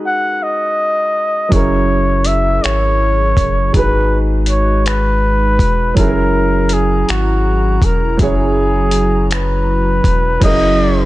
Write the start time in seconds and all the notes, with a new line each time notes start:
Already playing: G#3 D#4 F#4 A#4 B4
0.06 F#5
0.43 D#5
1.49 F#1 F#3 C#4 E4 G#4 A#4, kick, closed hi-hat
1.53 G#4 A#4 C#5
2.25 E5, closed hi-hat
2.64 G#1 C#5, finger snap, closed hi-hat
3.37 F#1, kick, closed hi-hat
3.73 G#1 G#3 D#4 F#4 B4, kick, closed hi-hat
3.77 G#4 B4
4.46 C#5, closed hi-hat
4.86 B4, finger snap, closed hi-hat
5.59 E1, kick, closed hi-hat
5.94 F#1 F#3 C#4 E4 G#4 A#4 A#5, kick, closed hi-hat
5.99 G#4 A4
6.07 A#4
6.69 G#4, closed hi-hat
7.09 G#1 F#4, finger snap, closed hi-hat
7.82 E1 A#4, kick, closed hi-hat
8.17 F#1 F#3 C#4 E4 F#4, kick, closed hi-hat
8.22 G#4 C#5
8.91 closed hi-hat
9.31 B4, finger snap, closed hi-hat
10.04 E1, kick, closed hi-hat
10.40 F#1 F#3 C#4 E4 G#4 A#4 D#5, kick, closed hi-hat, crash
10.45 G#4 A#4